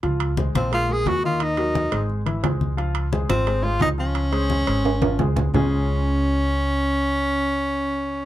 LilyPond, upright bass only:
\new Staff \with { instrumentName = "Upright bass" } { \clef bass \time 4/4 \key des \major \tempo 4 = 174 des,4. bes,,4. ees,4~ | ees,4. aes,,4. des,4~ | des,4. aes,,4. des,4~ | des,4. aes,,4. des,4 |
des,1~ | des,1 | }